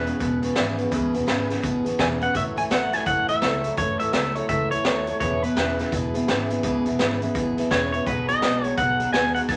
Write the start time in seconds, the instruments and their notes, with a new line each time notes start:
Already playing: clean electric guitar B4
0.07 clean electric guitar E2 C#3, steel-string acoustic guitar B3 C#4 G#4 B4, closed hi-hat
0.19 upright bass E1, clean electric guitar E2 B2, steel-string acoustic guitar B3 C#4 G#4 B4, kick, closed hi-hat
0.42 clean electric guitar E2 B2, steel-string acoustic guitar B3 C#4 G#4 B4, closed hi-hat
0.55 upright bass G#1, clean electric guitar E2 C#3, steel-string acoustic guitar C#3 E3 B3 C#4 G#4 B4, snare, closed hi-hat
0.78 clean electric guitar E2 C#3, steel-string acoustic guitar B3 C#4 G#4 B4, closed hi-hat
0.91 upright bass C#2, clean electric guitar E2 B2, steel-string acoustic guitar C#3 E3 B3 C#4 G#4 B4, kick, closed hi-hat
1.13 upright bass E1, clean electric guitar E2 B2, steel-string acoustic guitar B3 C#4 G#4 B4, closed hi-hat
1.26 upright bass G#1, clean electric guitar E2 C#3, steel-string acoustic guitar C#3 E3 B3 C#4 G#4 B4, snare, closed hi-hat
1.49 clean electric guitar E2 C#3, steel-string acoustic guitar B3 C#4 G#4 B4, snare, closed hi-hat
1.62 upright bass A1, clean electric guitar E2 B2, steel-string acoustic guitar B3 C#4 G#4 B4, kick, closed hi-hat
1.85 clean electric guitar E2 B2, steel-string acoustic guitar B3 C#4 G#4 B4, closed hi-hat
1.98 upright bass E1, clean electric guitar E2 C#3 G#5, steel-string acoustic guitar C#3 E3 B3 C#4 G#4 B4, kick, snare, closed hi-hat
2.21 clean electric guitar E2 C#3 F#5, steel-string acoustic guitar B3 C#4 G#4 B4, closed hi-hat
2.34 upright bass A1, clean electric guitar A2 E3 E5, steel-string acoustic guitar F#3 A3 E4 A4 C#5, kick, closed hi-hat
2.56 clean electric guitar A2 E3 G#5, steel-string acoustic guitar E4 A4 C#5, closed hi-hat
2.70 upright bass A1, clean electric guitar A2 F#3 F#5, steel-string acoustic guitar F#3 A3 E4 A4 C#5, snare, closed hi-hat
2.92 clean electric guitar A2 F#3 G#5, steel-string acoustic guitar E4 A4 C#5, snare, closed hi-hat
3.05 upright bass A1, clean electric guitar A2 E3 F#5, steel-string acoustic guitar F#3 E4 A4 C#5, kick, closed hi-hat
3.28 clean electric guitar A2 E3 E5, steel-string acoustic guitar E4 A4 C#5, closed hi-hat
3.42 upright bass C#2, clean electric guitar A2 F#3, steel-string acoustic guitar F#3 A3 E4 A4 C#5, snare, closed hi-hat
3.64 clean electric guitar A2 F#3, steel-string acoustic guitar E4 A4 C#5, closed hi-hat
3.77 upright bass F#1, clean electric guitar A2 E3 C#5, steel-string acoustic guitar F#3 A3 E4 A4 C#5, kick, closed hi-hat
3.99 upright bass A1, clean electric guitar A2 E3 E5, steel-string acoustic guitar E4 A4 C#5, closed hi-hat
4.13 upright bass C#2, clean electric guitar A2 F#3 E5, steel-string acoustic guitar F#3 A3 E4 A4 C#5, snare, closed hi-hat
4.35 clean electric guitar A2 F#3 C#5, steel-string acoustic guitar E4 A4 C#5, closed hi-hat
4.48 upright bass C#2, clean electric guitar A2 E3 E5, steel-string acoustic guitar F#3 E4 A4 C#5, kick, closed hi-hat
4.71 clean electric guitar A2 E3 C#5, steel-string acoustic guitar E4 A4 C#5, closed hi-hat
4.84 upright bass D#2, clean electric guitar A2 F#3, steel-string acoustic guitar F#3 A3 E4 A4 C#5, snare, closed hi-hat
5.06 clean electric guitar A2 F#3, steel-string acoustic guitar E4 A4 C#5, closed hi-hat
5.20 upright bass E1, clean electric guitar E2 B2 C#5, steel-string acoustic guitar C#3 E3 B3 E4 G#4 B4, kick, closed hi-hat
5.42 clean electric guitar E2 B2 B4, steel-string acoustic guitar B3 E4 G#4 B4, closed hi-hat
5.56 upright bass E1, clean electric guitar E2 C#3, steel-string acoustic guitar C#3 E3 B3 E4 G#4 B4, snare, closed hi-hat
5.78 clean electric guitar E2 C#3, steel-string acoustic guitar B3 E4 G#4 B4, snare, closed hi-hat
5.92 upright bass E1, clean electric guitar E2 B2, steel-string acoustic guitar B3 E4 G#4 B4, kick, closed hi-hat
6.14 clean electric guitar E2 B2, steel-string acoustic guitar B3 E4 G#4 B4, closed hi-hat
6.28 upright bass G#1, clean electric guitar E2 C#3, steel-string acoustic guitar C#3 E3 B3 E4 G#4 B4, snare, closed hi-hat
6.50 clean electric guitar E2 C#3, steel-string acoustic guitar B3 E4 G#4 B4, closed hi-hat
6.63 upright bass C#2, clean electric guitar E2 B2, steel-string acoustic guitar C#3 E3 B3 E4 G#4 B4, kick, closed hi-hat
6.85 upright bass E1, clean electric guitar E2 B2, steel-string acoustic guitar B3 E4 G#4 B4, closed hi-hat
6.99 upright bass G#1, clean electric guitar E2 C#3, steel-string acoustic guitar C#3 E3 B3 E4 G#4 B4, snare, closed hi-hat
7.21 clean electric guitar E2 C#3, steel-string acoustic guitar B3 E4 G#4 B4, closed hi-hat
7.35 upright bass A1, clean electric guitar E2 B2, steel-string acoustic guitar B3 E4 G#4 B4, kick, closed hi-hat
7.57 clean electric guitar E2 B2, steel-string acoustic guitar B3 E4 G#4 B4, closed hi-hat
7.70 upright bass E1, clean electric guitar E2 C#3 C#5, steel-string acoustic guitar C#3 E3 B3 E4 G#4 B4, kick, snare, closed hi-hat
7.92 clean electric guitar E2 C#3 C#5, steel-string acoustic guitar B3 E4 G#4 B4, closed hi-hat
8.06 upright bass B1, clean electric guitar B2 F#3 B4, steel-string acoustic guitar B3 D#4 F#4 G#4, kick, closed hi-hat
8.28 clean electric guitar B2 F#3 D#5, steel-string acoustic guitar D#4 F#4 G#4, closed hi-hat
8.42 upright bass B1, clean electric guitar B2 G#3, steel-string acoustic guitar B3 D#4 F#4 G#4, snare, closed hi-hat
8.64 clean electric guitar B2 G#3, steel-string acoustic guitar D#4 F#4 G#4, closed hi-hat
8.77 upright bass B1, clean electric guitar B2 F#3 F#5, steel-string acoustic guitar B3 D#4 F#4 G#4, kick, closed hi-hat
8.99 clean electric guitar B2 F#3, steel-string acoustic guitar D#4 F#4 G#4, closed hi-hat
9.13 upright bass D#2, clean electric guitar B2 G#3 G#5, steel-string acoustic guitar B3 D#4 F#4 G#4, snare, closed hi-hat
9.35 clean electric guitar B2 G#3 F#5, steel-string acoustic guitar D#4 F#4 G#4, closed hi-hat
9.49 upright bass A1, clean electric guitar B2 F#3 G#5, steel-string acoustic guitar B3 D#4 F#4 G#4, kick, closed hi-hat